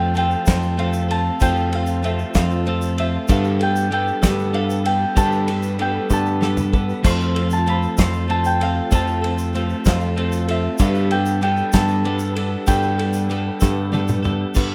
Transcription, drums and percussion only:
0.15 ride medium
0.15 shaker soft
0.31 shaker soft
0.46 kick medium
0.46 snare loud
0.46 ride loud
0.46 shaker loud
0.62 shaker soft
0.79 ride medium
0.93 shaker medium
1.11 ride medium
1.40 kick loud
1.40 ride loud
1.40 shaker medium
1.56 shaker soft
1.73 ride medium
1.86 shaker medium
2.03 ride medium
2.03 shaker soft
2.19 shaker soft
2.34 kick medium
2.34 snare loud
2.34 ride medium
2.34 shaker loud
2.50 shaker soft
2.67 ride medium
2.82 shaker medium
2.98 ride medium
3.28 kick loud
3.28 ride loud
3.28 shaker medium
3.44 shaker soft
3.61 ride medium
3.76 shaker medium
3.92 ride medium
4.07 shaker soft
4.23 kick medium
4.23 snare loud
4.23 ride loud
4.23 shaker loud
4.39 shaker soft
4.54 ride medium
4.70 shaker medium
4.85 ride medium
5.17 kick loud
5.17 ride loud
5.17 shaker loud
5.32 shaker soft
5.48 ride medium
5.48 shaker soft
5.63 shaker medium
5.79 ride medium
6.10 kick medium
6.10 shaker loud
6.26 shaker soft
6.42 snare medium
6.42 shaker soft
6.57 mid tom medium
6.57 shaker medium
6.73 kick loud
6.73 shaker soft
6.89 shaker soft
7.04 kick loud
7.04 crash loud
7.04 ride loud
7.04 shaker loud
7.20 shaker soft
7.36 ride medium
7.50 shaker medium
7.66 ride medium
7.66 shaker soft
7.82 shaker soft
7.98 kick medium
7.98 snare loud
7.98 ride loud
7.98 shaker loud
8.13 shaker soft
8.30 ride medium
8.44 shaker medium
8.61 ride medium
8.91 kick loud
8.91 ride loud
8.91 shaker loud
9.07 shaker soft
9.24 ride medium
9.38 shaker medium
9.54 ride medium
9.54 shaker soft
9.69 shaker soft
9.85 kick medium
9.85 snare loud
9.85 ride loud
9.85 shaker loud
10.00 shaker soft
10.17 ride medium
10.32 shaker medium
10.48 ride medium
10.78 kick loud
10.78 ride loud
10.78 shaker loud
10.95 shaker soft
11.11 ride medium
11.26 shaker medium
11.41 ride medium
11.41 shaker soft
11.57 shaker soft
11.73 kick medium
11.73 snare loud
11.73 ride loud
11.73 shaker loud
11.88 shaker soft
12.05 ride medium
12.19 shaker medium
12.36 ride medium
12.67 kick loud
12.67 ride loud
12.67 shaker loud
12.82 shaker soft
12.99 ride medium
13.13 shaker medium
13.29 ride medium
13.29 shaker soft
13.61 kick medium
13.61 snare medium
13.61 shaker loud
13.93 high tom medium
13.93 shaker soft
14.08 mid tom medium
14.08 shaker medium
14.24 mid tom loud
14.24 shaker soft
14.54 kick loud
14.54 crash loud
14.54 shaker loud

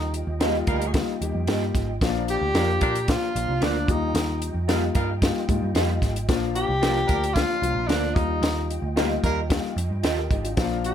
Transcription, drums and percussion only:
0.14 closed hi-hat medium
0.41 snare loud
0.41 closed hi-hat medium
0.67 kick medium
0.67 closed hi-hat medium
0.82 closed hi-hat medium
0.94 kick medium
0.94 snare loud
0.94 closed hi-hat medium
1.22 closed hi-hat medium
1.47 snare loud
1.47 closed hi-hat medium
1.75 kick medium
1.75 snare soft
1.75 closed hi-hat medium
2.01 kick medium
2.01 snare medium
2.01 closed hi-hat medium
2.28 closed hi-hat medium
2.55 snare loud
2.55 closed hi-hat medium
2.81 kick medium
2.81 closed hi-hat medium
2.95 closed hi-hat medium
3.08 kick medium
3.08 snare loud
3.08 closed hi-hat medium
3.36 closed hi-hat medium
3.62 snare loud
3.62 closed hi-hat medium
3.88 kick medium
3.88 closed hi-hat medium
4.15 snare medium
4.15 closed hi-hat medium
4.42 closed hi-hat medium
4.69 snare medium
4.69 closed hi-hat medium
4.95 kick medium
4.95 closed hi-hat medium
5.22 kick medium
5.22 snare loud
5.22 closed hi-hat medium
5.49 kick medium
5.49 closed hi-hat medium
5.75 snare medium
5.75 closed hi-hat medium
6.02 kick medium
6.02 snare soft
6.02 closed hi-hat medium
6.16 closed hi-hat medium
6.29 kick medium
6.29 snare loud
6.29 closed hi-hat medium
6.55 closed hi-hat medium
6.83 snare loud
6.83 closed hi-hat medium
7.09 kick medium
7.09 closed hi-hat medium
7.24 closed hi-hat medium
7.36 kick medium
7.36 snare loud
7.36 closed hi-hat medium
7.63 closed hi-hat medium
7.89 snare medium
7.89 closed hi-hat medium
8.16 kick medium
8.16 closed hi-hat medium
8.43 snare loud
8.43 closed hi-hat medium
8.71 closed hi-hat medium
8.97 snare loud
8.97 closed hi-hat medium
9.24 kick medium
9.24 closed hi-hat medium
9.50 kick medium
9.50 snare loud
9.50 closed hi-hat medium
9.78 closed hi-hat medium
10.04 snare medium
10.04 closed hi-hat medium
10.31 kick medium
10.31 closed hi-hat medium
10.45 closed hi-hat medium
10.57 kick medium
10.57 snare medium
10.57 closed hi-hat medium
10.84 closed hi-hat medium

